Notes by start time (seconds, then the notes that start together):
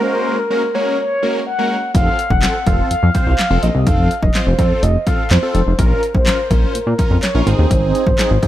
Already playing: G#3 A#3 C#4 F#4 A#4
0.03 C5
0.39 A#4
0.50 G#3 A#3 C#4 F#4 A#4
0.74 G#3 A#3 C#4 F#4 A#4 C#5
0.99 C#5
1.22 G#3 A#3 C#4 F#4 A#4
1.47 F#5
1.59 G#3 A#3 C#4 F#4 A#4
1.94 F1 C4 F4 A4 F5, kick, closed hi-hat
2.19 closed hi-hat
2.30 F1 F#5, kick
2.42 C4 F4 A4, snare, clap, closed hi-hat
2.66 F1 C4 F4 A4 F5, kick, closed hi-hat
2.91 F2 F5, closed hi-hat
3.03 F2
3.14 C4 F4 C5 F5, kick, closed hi-hat
3.27 C2
3.39 snare, clap, closed hi-hat
3.50 F1 C4 F4 A4
3.63 A#1 D#5, closed hi-hat
3.75 C2
3.86 F1 C4 F4 A4 F5, kick, closed hi-hat
4.11 closed hi-hat
4.23 F1 D#5, kick
4.35 C4 F4 C5, snare, clap, closed hi-hat
4.47 F1 C5
4.59 F2 C4 F4 A4, kick, closed hi-hat
4.83 F1 D#5, closed hi-hat
5.06 C4 F4 A4 F5, kick, closed hi-hat
5.31 F2 C5, snare, clap, closed hi-hat
5.43 C4 F4 A4
5.55 F1, closed hi-hat
5.67 F1
5.78 A#1 C#4 F4 A#4, kick, closed hi-hat
6.03 closed hi-hat
6.15 A#1 C5, kick
6.26 C#4 F4 A#4, snare, clap, closed hi-hat
6.51 A#1 C#4 F4 A#4 C5, kick, closed hi-hat
6.75 A#2, closed hi-hat
6.87 A#2
6.98 C#4 F4 A#4, kick, closed hi-hat
7.11 F2
7.23 C#5, snare, clap, closed hi-hat
7.34 A#1 C#4 F4 A#4
7.46 G#1 C4 D#4 G#4 C5, closed hi-hat
7.59 D#2
7.71 G#1, kick, closed hi-hat
7.95 closed hi-hat
8.07 G#1, kick
8.18 C4 D#4 G#4, snare, clap, closed hi-hat
8.31 G#1
8.42 G#2 C4 D#4 G#4, kick, closed hi-hat